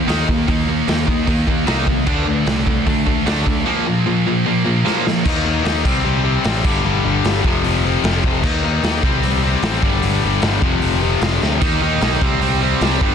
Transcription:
Already playing: D#3 A#3 D#4
0.08 D#2 D#3 A#3 D#4, snare, open hi-hat
0.28 D#2 D#3 A#3, kick
0.48 D#2 D#3 A#3 D#4, kick, open hi-hat
0.68 D#3 A#3
0.88 D#2 D#3 A#3, snare, open hi-hat
1.08 D#2 D#3 A#3, kick
1.27 D#2 D#3 A#3 D#4, kick, open hi-hat
1.47 D#2 D#3 A#3, kick
1.66 C2 D#3 A#3 D#4, snare, open hi-hat
1.87 D#3 A#3, kick
2.07 D2 D3 A3 D4, kick, crash
2.26 D2 D3 A3
2.46 C2 D3 A3, snare, open hi-hat
2.67 D3 A3, kick
2.86 D2 D3 A3 D4, kick, open hi-hat
3.06 D3 A3, kick
3.26 D2 D3 A3 D4, snare, open hi-hat
3.46 D2 D3 A3, kick
3.65 A#2 F3 A#3
3.87 A#2 F3
4.06 A#2 F3
4.27 A#2 F3
4.46 A#2 F3 A#3
4.65 A#2 F3
4.85 A#2 F3 A#3, snare
5.06 A#2 F3, snare
5.25 D#2 D#3 A#3 D#4, kick, crash
5.45 D#2 D#3 A#3 D#4
5.64 D#2 D#3 A#3 D#4, snare, open hi-hat
5.84 C2 C3 G3 C4, kick, crash
6.04 C2 C3 G3 C4
6.24 C3 G3 C4
6.44 A1 C3 G3 C4, snare, open hi-hat
6.64 G1 G2 D3 G3, kick, crash
6.84 G1 G2 D3 G3
7.04 G1 G2 D3 G3
7.24 G1 G2 D3 G3, snare, open hi-hat
7.44 F1 F2 C3 F3, kick
7.64 F1 F2 C3 F3, open hi-hat
7.85 F2 C3 F3
8.04 F1 F2 C3 F3, snare, open hi-hat
8.24 F1 F2 C3 F3, kick
8.43 D#2 D#3 A#3 D#4, kick, crash
8.63 D#2 D#3 A#3 D#4
8.83 D#2 D#3 A#3 D#4, snare, open hi-hat
9.03 C2 C3 G3 C4, kick
9.23 C2 C3 G3 C4, open hi-hat
9.43 C3 G3 C4
9.62 A1 C3 G3 C4, snare, open hi-hat
9.82 G1 G2 D3 G3, kick
10.02 G1 G2 D3 G3, open hi-hat
10.23 G1 G2 D3 G3
10.42 G1 G2 D3 G3, snare, open hi-hat
10.62 F1 F2 C3 F3, kick
10.82 F1 F2 C3 F3, open hi-hat
11.02 F2 C3 F3
11.22 F1 F2 C3 F3, snare, open hi-hat
11.42 D2 F2 C3 F3, snare
11.61 D#2 D#3 A#3 D#4, kick, open hi-hat, crash
11.81 D#2 D#3 A#3 D#4
12.01 B1 D#3 A#3 D#4, snare, open hi-hat
12.21 C2 C3 G3 C4, kick
12.41 C2 C3 G3 C4, open hi-hat
12.62 C3 G3 C4
12.81 C2 C3 G3 C4, snare, open hi-hat
13.01 G1 G2 D3 G3, kick

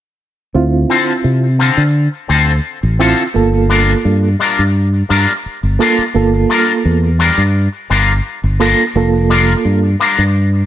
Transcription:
0.54 D2 C4 E4 F4
0.89 D3 C4 F4 A4
1.24 C3
1.59 D3 C4 F4 A4
1.77 D3
2.28 D2 D3 C4 F4 A4
2.83 A1
2.99 D3 C4 E4 F4 A4
3.34 G1 A#3 F4 A4
3.69 G3 D4 F4 A#4
4.05 G2
4.39 G3 D4 F4 A#4
4.59 G2
5.09 G2 G3 D4 F4 A#4
5.46 muted fingered electric bass stroke
5.63 G1
5.79 G3 A#3 D4 F4 A4 A#4
5.98 muted fingered electric bass stroke
6.15 G1 A#3 F4 A4
6.49 G3 D4 F4 A#4
6.85 E2
7.19 G3 D4 F4 A#4
7.37 G2
7.90 G1 G3 D4 F4 A#4
8.44 G1
8.59 G3 A#3 D4 F4 A4 A#4
8.95 F1 A#3 F4 A4
9.29 G3 D4 F4 A#4
9.65 G2
9.99 G3 D4 F4 A#4
10.18 G2

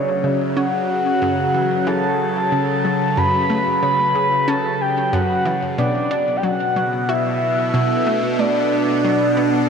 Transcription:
Already playing: C#3 F#3 B4 C#5
0.24 C#3
0.57 C#4 F#5
1.22 F#2
1.54 E3
1.87 E3 A5
2.52 C#3
2.85 F#3
3.17 F#2 B5
3.50 A3
3.83 C#3 B5
4.15 C#3
4.48 C#4 A5
4.81 G5
5.13 F#2 F#5
5.46 E3
5.78 B2 D5
5.87 B3
6.11 D4
6.26 A4
6.37 G5
6.43 F#3 F#5
6.76 F#3
7.09 F#4 E5
7.29 D4
7.74 B2
8.07 A3
8.39 A3 D5
9.04 F#3
9.37 B3

